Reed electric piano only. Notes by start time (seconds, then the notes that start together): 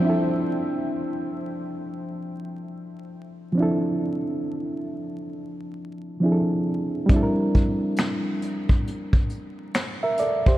0.00 F3 C4
0.04 D4 E4
0.10 A4
3.53 F3 C4
3.58 D4 E4
3.62 A4
6.20 F3 C4 D4 E4
6.25 G#4
6.32 A4
7.06 G3 C4
7.11 D4 E4
7.16 A4
7.23 A#4
10.03 A#4 E5
10.19 A4 D5
10.48 G4 C5